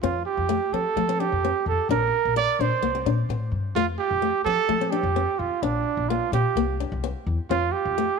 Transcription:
0.02 0.23 F2 medium
0.02 0.16 C4 medium
0.02 0.24 F4 medium
0.26 0.75 G4 medium
0.37 0.57 F2 medium
0.49 0.62 A3 medium
0.72 0.82 F3 medium
0.72 0.86 C4 medium
0.72 1.21 A4 medium
0.96 1.26 F3 medium
0.96 1.03 A3 medium
1.09 1.15 C4 medium
1.20 1.33 D4 medium
1.20 1.66 G4 medium
1.32 1.52 F2 medium
1.45 1.57 C4 medium
1.66 1.76 F2 medium
1.66 1.89 A4 medium
1.89 2.09 A#1 medium
1.89 2.03 D4 medium
1.89 2.34 A#4 loud
2.25 2.45 A#1 medium
2.36 2.62 D5 loud
2.36 muted nylon-string guitar stroke medium
2.59 2.69 A#2 medium
2.59 2.73 D4 medium
2.59 3.07 C5 loud
2.82 3.02 C2 medium
2.82 2.89 A#3 medium
2.95 3.01 C4 medium
3.06 3.27 A#2 medium
3.06 3.19 D4 medium
3.29 3.50 A2 medium
3.29 3.43 C4 medium
3.52 3.73 G2 medium
3.75 3.95 F2 medium
3.75 3.89 A3 medium
3.75 3.86 F4 medium
3.99 4.42 G4 loud
4.11 4.31 F2 medium
4.22 4.35 A3 medium
4.45 4.56 F3 medium
4.45 4.59 C4 medium
4.45 4.92 A4 loud
4.69 4.99 F3 medium
4.69 4.76 A3 medium
4.81 4.88 C4 medium
4.91 5.05 D4 medium
4.91 5.40 G4 medium
5.03 5.24 F2 medium
5.16 5.29 C4 medium
5.39 5.49 F2 medium
5.39 5.64 F4 medium
5.62 5.82 A#1 medium
5.62 6.10 D4 medium
5.62 5.76 D4 medium
5.97 6.17 A#1 medium
6.09 6.23 A#3 medium
6.09 6.33 F4 medium
6.32 6.42 A#2 medium
6.32 6.77 G4 medium
6.32 muted nylon-string guitar stroke medium
6.55 6.86 C2 medium
6.55 6.63 A#3 medium
6.80 6.93 D4 medium
6.92 7.12 C2 medium
7.04 7.16 C4 medium
7.26 7.37 E2 medium
7.50 7.70 F2 medium
7.50 7.63 C4 medium
7.50 7.74 F4 medium
7.72 8.20 G4 medium
7.85 8.05 F2 medium
7.98 8.10 A3 medium

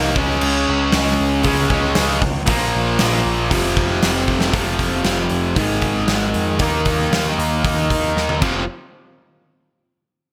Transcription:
0.00 0.16 C2 loud
0.00 0.14 D#3 medium
0.00 0.15 A#3 medium
0.00 0.16 D#4 medium
0.16 0.39 C#2 loud
0.16 1.42 C#3 loud
0.16 1.44 G#3 loud
0.16 1.45 C#4 loud
0.16 kick loud
0.41 0.65 C#2 medium
0.41 crash loud
0.69 0.91 C#2 medium
0.92 1.16 C#2 medium
0.92 snare loud
0.92 open hi-hat medium
1.20 1.43 C#2 loud
1.43 1.68 C#2 loud
1.43 1.68 C#3 medium
1.43 1.69 G#3 medium
1.43 kick medium
1.43 open hi-hat medium
1.47 1.69 C#4 medium
1.70 1.94 C#2 loud
1.70 2.21 C#3 medium
1.70 2.21 G#3 medium
1.70 2.20 C#4 medium
1.70 kick medium
1.95 2.20 C#2 loud
1.95 snare loud
1.95 open hi-hat medium
2.22 2.45 C#2 medium
2.22 kick medium
2.46 2.71 A#1 loud
2.46 3.49 A#2 loud
2.46 3.49 F3 loud
2.46 3.50 A#3 loud
2.46 kick loud
2.46 open hi-hat medium
2.75 2.98 A#1 loud
2.99 3.23 A#1 medium
2.99 snare loud
2.99 open hi-hat medium
3.26 3.49 A#1 medium
3.50 3.74 F1 loud
3.50 4.50 F2 loud
3.50 4.53 C3 loud
3.50 4.54 F3 medium
3.50 kick medium
3.50 open hi-hat medium
3.77 4.00 F1 medium
3.77 kick medium
4.02 4.26 F1 medium
4.02 snare loud
4.02 open hi-hat medium
4.28 4.51 F1 medium
4.28 kick medium
4.41 snare loud
4.51 4.79 F1 medium
4.51 5.54 F2 medium
4.51 5.56 C3 medium
4.51 kick loud
4.51 open hi-hat medium
4.55 5.56 F3 loud
4.79 5.04 F1 medium
4.79 kick medium
4.79 open hi-hat medium
5.05 5.30 F1 medium
5.05 snare loud
5.05 open hi-hat medium
5.30 5.56 F1 medium
5.30 open hi-hat soft
5.56 5.82 G#1 medium
5.56 6.59 G#2 medium
5.56 6.59 D#3 medium
5.56 6.61 G#3 medium
5.56 kick loud
5.56 open hi-hat medium
5.82 6.07 G#1 medium
5.82 kick medium
5.82 open hi-hat medium
6.07 6.33 G#1 medium
6.07 snare medium
6.07 open hi-hat medium
6.34 6.59 F2 medium
6.34 open hi-hat soft
6.59 7.10 D#2 medium
6.59 8.41 D#3 medium
6.59 8.42 A#3 medium
6.59 kick loud
6.59 open hi-hat medium
6.64 8.44 D#4 loud
6.85 kick medium
6.85 open hi-hat medium
7.11 7.37 D#2 medium
7.11 snare loud
7.11 open hi-hat medium
7.38 7.63 D#2 medium
7.38 open hi-hat medium
7.64 7.89 D#2 medium
7.64 kick loud
7.64 open hi-hat medium
7.90 8.15 D#2 medium
7.90 kick medium
7.90 open hi-hat medium
8.16 8.41 D#2 medium
8.16 snare medium
8.29 high tom medium
8.41 8.66 F1 loud
8.41 8.62 F2 loud
8.41 8.62 C3 loud
8.41 8.63 F3 loud
8.41 kick loud
8.41 crash medium

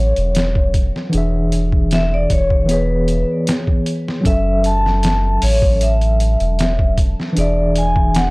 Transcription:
0.00 0.13 A1 medium
0.00 1.04 F#3 medium
0.00 1.05 C#4 medium
0.00 1.06 A4 medium
0.00 0.71 C#5 medium
0.00 1.08 E5 medium
0.16 0.91 E1 medium
0.16 closed hi-hat soft
0.35 snare loud
0.35 closed hi-hat medium
0.55 kick medium
0.74 kick medium
0.74 closed hi-hat medium
0.96 snare soft
1.10 2.60 E3 medium
1.10 2.61 D4 medium
1.10 closed hi-hat medium
1.14 2.27 E1 medium
1.14 2.62 G#4 medium
1.14 2.64 E5 medium
1.52 closed hi-hat medium
1.72 kick medium
1.91 2.13 E5 loud
1.91 snare loud
1.91 closed hi-hat medium
2.14 2.30 D5 medium
2.30 3.25 E1 medium
2.30 2.71 C#5 medium
2.30 kick medium
2.30 closed hi-hat medium
2.50 kick medium
2.65 4.16 E3 medium
2.65 4.17 B3 medium
2.65 closed hi-hat medium
2.71 4.18 G#4 medium
2.71 3.44 B4 medium
2.71 4.20 C#5 medium
3.08 closed hi-hat medium
3.47 snare loud
3.47 closed hi-hat medium
3.67 kick medium
3.86 closed hi-hat medium
4.08 snare soft
4.21 7.27 F#3 medium
4.21 7.28 C#4 medium
4.25 5.38 F#1 medium
4.25 7.30 A4 medium
4.25 4.62 E5 loud
4.25 kick loud
4.25 closed hi-hat medium
4.29 7.31 E5 medium
4.64 5.39 A5 loud
4.64 closed hi-hat medium
4.86 snare soft
5.03 snare loud
5.03 closed hi-hat medium
5.42 6.36 A1 medium
5.42 5.79 C#5 medium
5.42 open hi-hat medium
5.62 kick medium
5.81 6.94 E5 medium
5.81 closed hi-hat medium
6.01 closed hi-hat soft
6.20 closed hi-hat medium
6.40 7.14 E1 medium
6.40 closed hi-hat soft
6.59 snare loud
6.59 closed hi-hat medium
6.79 kick medium
6.97 kick medium
6.97 closed hi-hat medium
7.20 snare soft
7.33 8.30 E3 medium
7.33 8.30 D4 medium
7.33 closed hi-hat medium
7.37 8.30 E1 medium
7.37 8.30 G#4 medium
7.37 7.78 D5 medium
7.37 8.30 E5 medium
7.76 8.17 G#5 loud
7.76 closed hi-hat medium
7.96 kick medium
8.15 8.30 F#5 medium
8.15 snare loud
8.15 closed hi-hat medium

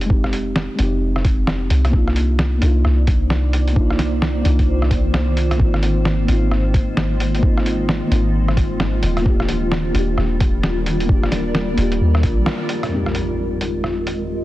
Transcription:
0.00 0.68 F1 medium
0.00 0.06 G#3 medium
0.00 0.09 C4 medium
0.00 0.11 D#4 medium
0.00 0.14 G4 medium
0.00 closed hi-hat soft
0.06 0.74 G#3 medium
0.06 0.76 C4 medium
0.10 0.77 D#4 medium
0.10 0.79 G4 medium
0.10 kick loud
0.24 cross-stick medium
0.33 closed hi-hat medium
0.56 snare loud
0.75 1.70 F1 medium
0.75 1.89 G#3 medium
0.75 1.91 C4 medium
0.75 closed hi-hat medium
0.80 1.92 D#4 medium
0.80 1.93 G4 medium
1.16 cross-stick medium
1.25 kick loud
1.25 closed hi-hat medium
1.47 cross-stick medium
1.47 snare loud
1.70 2.61 C2 medium
1.70 closed hi-hat medium
1.85 cross-stick medium
1.85 closed hi-hat soft
1.89 2.57 A#3 medium
1.89 2.59 D4 medium
1.89 kick loud
1.94 7.09 A#3 medium
1.94 2.61 D#4 medium
1.94 2.62 F4 medium
2.08 14.44 F4 medium
2.08 cross-stick medium
2.12 14.13 D#3 medium
2.12 closed hi-hat medium
2.27 5.59 D5 medium
2.32 10.74 C5 medium
2.39 snare loud
2.58 3.71 A#3 medium
2.58 3.74 D4 medium
2.58 closed hi-hat medium
2.62 2.84 C2 medium
2.62 3.75 D#4 medium
2.62 3.77 F4 medium
2.85 4.44 C2 medium
2.85 cross-stick medium
3.07 kick loud
3.07 closed hi-hat medium
3.30 snare loud
3.53 closed hi-hat medium
3.67 closed hi-hat soft
3.72 4.40 A#3 medium
3.72 4.42 D4 medium
3.72 kick loud
3.78 4.44 D#4 medium
3.78 4.45 F4 medium
3.90 cross-stick medium
3.99 snare medium
3.99 closed hi-hat medium
4.22 snare loud
4.41 5.55 A#3 medium
4.41 5.57 D4 medium
4.41 closed hi-hat medium
4.45 5.59 C2 medium
4.45 5.58 D#4 medium
4.45 5.60 F4 medium
4.59 kick medium
4.59 closed hi-hat soft
4.82 cross-stick medium
4.91 kick loud
4.91 closed hi-hat medium
5.14 cross-stick medium
5.14 snare loud
5.37 closed hi-hat medium
5.51 cross-stick medium
5.51 closed hi-hat soft
5.56 6.27 G#1 medium
5.56 6.23 A#3 medium
5.56 6.26 C4 medium
5.56 kick loud
5.60 9.26 G#3 medium
5.60 6.27 D#4 medium
5.60 6.28 F4 medium
5.74 cross-stick medium
5.83 closed hi-hat soft
6.05 snare loud
6.14 9.26 D#5 medium
6.25 8.01 G#1 medium
6.25 7.38 A#3 medium
6.25 7.40 C4 medium
6.25 closed hi-hat medium
6.30 7.42 D#4 medium
6.30 7.43 F4 medium
6.52 cross-stick medium
6.74 kick loud
6.74 closed hi-hat soft
6.97 snare loud
7.20 closed hi-hat medium
7.35 closed hi-hat soft
7.39 8.06 A#3 medium
7.39 8.09 C4 medium
7.39 kick loud
7.44 8.10 D#4 medium
7.44 8.12 F4 medium
7.57 cross-stick medium
7.66 closed hi-hat medium
7.89 snare loud
8.07 9.02 G#1 medium
8.07 9.21 A#3 medium
8.07 9.23 C4 medium
8.12 9.25 D#4 medium
8.12 9.26 F4 medium
8.12 closed hi-hat medium
8.48 cross-stick medium
8.57 kick loud
8.57 closed hi-hat soft
8.80 cross-stick medium
8.80 snare medium
9.03 9.94 D#1 medium
9.03 closed hi-hat medium
9.17 cross-stick medium
9.17 closed hi-hat soft
9.22 9.90 A#3 medium
9.22 9.92 D4 medium
9.26 12.93 G3 medium
9.26 9.93 F4 medium
9.26 9.95 G4 medium
9.26 kick loud
9.40 cross-stick medium
9.49 closed hi-hat medium
9.71 14.38 A#4 medium
9.71 snare loud
9.91 10.16 D#1 medium
9.91 11.04 A#3 medium
9.91 11.07 D4 medium
9.91 12.93 D5 medium
9.91 closed hi-hat medium
9.96 11.08 F4 medium
9.96 11.09 G4 medium
10.18 11.77 D#1 medium
10.18 cross-stick medium
10.40 kick loud
10.40 closed hi-hat medium
10.63 snare medium
10.86 closed hi-hat medium
11.00 closed hi-hat soft
11.05 11.73 A#3 medium
11.05 11.75 D4 medium
11.05 kick loud
11.11 11.77 F4 medium
11.11 11.78 G4 medium
11.23 cross-stick medium
11.32 snare medium
11.32 closed hi-hat medium
11.55 snare loud
11.74 12.00 D#1 medium
11.74 12.88 A#3 medium
11.74 12.90 D4 medium
11.74 closed hi-hat medium
11.79 12.91 F4 medium
11.79 12.92 G4 medium
11.92 closed hi-hat soft
12.01 12.25 D#2 loud
12.15 cross-stick medium
12.23 12.47 A#1 medium
12.23 kick loud
12.23 closed hi-hat medium
12.46 cross-stick medium
12.46 snare medium
12.69 closed hi-hat medium
12.83 cross-stick medium
12.83 closed hi-hat soft
12.88 14.44 F2 medium
12.88 14.44 G#3 medium
12.88 impact medium
12.92 14.44 G#3 medium
12.92 14.44 C4 medium
12.92 14.44 D#4 medium
12.96 14.44 G4 medium
13.06 14.44 D#5 medium
13.06 cross-stick medium
13.15 closed hi-hat medium
13.31 14.44 G4 medium
13.57 14.44 C5 medium
13.61 closed hi-hat soft
13.84 cross-stick medium
14.07 closed hi-hat soft

